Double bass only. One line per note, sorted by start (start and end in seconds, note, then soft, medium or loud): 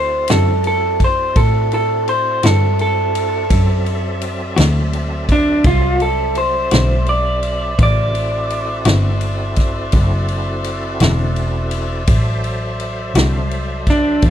0.00 0.26 D2 medium
0.30 1.33 F#2 medium
1.36 2.40 A2 medium
2.44 3.47 G2 medium
3.50 4.54 F#2 medium
4.58 5.62 D2 medium
5.65 6.69 C2 medium
6.72 7.76 B1 medium
7.79 8.83 A1 medium
8.85 9.90 G1 medium
9.93 10.98 F#1 medium
11.01 12.05 E1 medium
12.08 13.13 A1 medium
13.14 14.20 C2 medium
14.23 14.30 E2 medium